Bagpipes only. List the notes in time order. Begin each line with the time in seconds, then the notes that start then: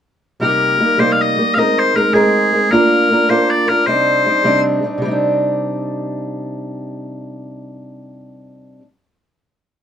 0.41 A#4
1.00 C5
1.12 F5
1.21 D#5
1.54 F5
1.58 D#5
1.79 C5
1.96 A#4
2.14 G#4
2.71 A#4
3.30 C5
3.50 D5
3.68 A#4
3.86 C5